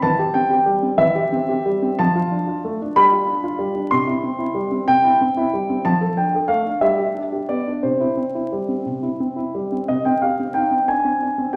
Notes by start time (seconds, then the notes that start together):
0.02 E3 A5
0.19 G4
0.34 C4 G5
0.50 G4
0.66 G3
0.82 C4
0.98 E3 E5
1.15 G4
1.32 C4
1.49 G4
1.66 G3
1.82 C4
1.99 F3 A5
2.15 F4
2.31 D4
2.47 F4
2.64 A3
2.81 D4
2.96 G3 B5
3.12 F4
3.28 D4
3.44 F4
3.59 G3
3.75 D4
3.91 C3 C6
4.07 E4
4.23 C4
4.39 E4
4.54 G3
4.71 C4
4.88 C3 G5
5.04 E4
5.21 C4
5.37 E4
5.53 G3
5.70 C4
5.85 F3 A5
6.01 A4
6.17 D4 G5
6.34 A4
6.48 A3 F5
6.66 D4
6.81 G3 E5
6.98 G4
7.14 D4
7.32 G4
7.49 B3 D5
7.67 D4
7.83 C3 C5
8.00 E4
8.17 C4
8.35 E4
8.52 G3
8.68 C4
8.85 C3
9.03 E4
9.20 C4
9.36 E4
9.54 G3
9.72 C4
9.88 C3 D#5
10.05 C4 G5
10.22 G4 F5
10.40 C4
10.54 D#4 G5
10.71 C4
10.88 D4 G#5
11.05 C4
11.22 D4
11.38 C4
11.53 G4 G5